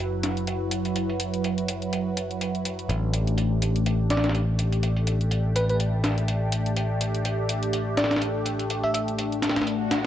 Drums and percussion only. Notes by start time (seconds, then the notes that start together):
0.23 snare, closed hi-hat
0.37 closed hi-hat
0.47 closed hi-hat
0.71 closed hi-hat
0.85 closed hi-hat
0.96 closed hi-hat
1.10 closed hi-hat
1.20 closed hi-hat
1.34 closed hi-hat
1.44 closed hi-hat
1.58 closed hi-hat
1.68 closed hi-hat
1.82 closed hi-hat
1.93 closed hi-hat
2.17 closed hi-hat
2.31 closed hi-hat
2.41 closed hi-hat
2.55 closed hi-hat
2.65 closed hi-hat
2.79 closed hi-hat
2.89 closed hi-hat
3.13 closed hi-hat
3.27 closed hi-hat
3.38 closed hi-hat
3.62 closed hi-hat
3.76 closed hi-hat
3.86 closed hi-hat
4.10 snare, closed hi-hat
4.17 snare, closed hi-hat
4.24 snare, closed hi-hat
4.29 snare, closed hi-hat
4.35 closed hi-hat
4.59 closed hi-hat
4.72 closed hi-hat
4.83 closed hi-hat
4.97 closed hi-hat
5.07 closed hi-hat
5.21 closed hi-hat
5.31 closed hi-hat
5.56 closed hi-hat
5.69 closed hi-hat
5.80 closed hi-hat
6.04 snare, closed hi-hat
6.18 closed hi-hat
6.28 closed hi-hat
6.52 closed hi-hat
6.66 closed hi-hat
6.76 closed hi-hat
7.01 closed hi-hat
7.15 closed hi-hat
7.25 closed hi-hat
7.49 closed hi-hat
7.63 closed hi-hat
7.73 closed hi-hat
7.97 snare, closed hi-hat
8.04 snare, closed hi-hat
8.11 snare, closed hi-hat
8.16 snare, closed hi-hat
8.21 closed hi-hat
8.46 closed hi-hat
8.59 closed hi-hat
8.70 closed hi-hat
8.84 closed hi-hat
8.94 closed hi-hat
9.08 closed hi-hat
9.18 closed hi-hat
9.32 closed hi-hat
9.42 snare, closed hi-hat
9.49 snare, closed hi-hat
9.56 snare, closed hi-hat
9.61 snare, closed hi-hat
9.67 closed hi-hat
9.91 snare, closed hi-hat